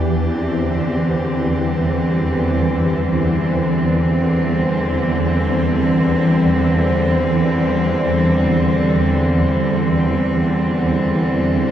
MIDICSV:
0, 0, Header, 1, 3, 480
1, 0, Start_track
1, 0, Tempo, 500000
1, 11244, End_track
2, 0, Start_track
2, 0, Title_t, "Cello section"
2, 0, Program_c, 0, 48
2, 0, Note_on_c, 0, 40, 67
2, 0, Note_on_c, 0, 62, 53
2, 0, Note_on_c, 0, 67, 70
2, 277, Note_on_c, 0, 60, 80
2, 563, Note_on_c, 0, 50, 70
2, 962, Note_off_c, 0, 62, 0
2, 1487, Note_on_c, 0, 55, 66
2, 3165, Note_off_c, 0, 67, 0
2, 11244, Note_off_c, 0, 40, 0
2, 11244, Note_off_c, 0, 50, 0
2, 11244, Note_off_c, 0, 55, 0
2, 11244, Note_off_c, 0, 60, 0
2, 11244, End_track
3, 0, Start_track
3, 0, Title_t, "Synth drone"
3, 0, Program_c, 1, 95
3, 0, Note_on_c, 1, 40, 64
3, 0, Note_on_c, 1, 52, 68
3, 11244, Note_off_c, 1, 40, 0
3, 11244, Note_off_c, 1, 52, 0
3, 11244, End_track
0, 0, End_of_file